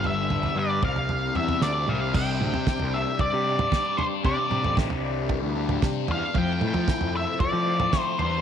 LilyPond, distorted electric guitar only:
\new Staff \with { instrumentName = "Distorted electric guitar" } { \clef bass \time 4/4 \key c \major \tempo 4 = 114 <g, d g>8 <d g>8 <g, d g>8 <c g c'>4 <g c'>8 <c g c'>8 <g c'>8 | c8 c'8 g'8 d'8 g8 d'8 g'8 d'8 | c8 c'8 g'8 d'8 g8 d'8 g'8 d'8 | f8 a8 e'8 c'8 f8 c'8 e'8 e,8 | }